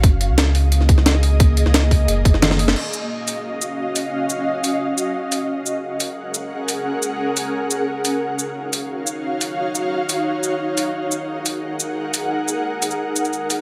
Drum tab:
CC |----------------|----------------|x---------------|----------------|
HH |x-x-x-o-x-x-x-o-|x-x-x-o-x-x-x-o-|------o-------o-|------o-------o-|
SH |----------------|----------------|--x---x---x---x-|--x---x---x---x-|
SD |----o----o-ooo--|---ooo-----ooo-o|----------------|----------------|
T1 |----------------|------------o---|----------------|----------------|
BD |o---------o-----|o-----o---o-----|----------------|----------------|

CC |----------------|----------------|----------------|----------------|
HH |------o-------o-|------o-------o-|------o-------o-|------o-------o-|
SH |--x---x---x---x-|--x---x---x---x-|--x---x---x---x-|--x---x---x---x-|
SD |----------------|----------------|----------------|----------------|
T1 |----------------|----------------|----------------|----------------|
BD |----------------|----------------|----------------|----------------|

CC |----------------|----------------|
HH |------o-------o-|------o-------o-|
SH |--x---x---x---x-|--x---xx--xxx-x-|
SD |----------------|----------------|
T1 |----------------|----------------|
BD |----------------|----------------|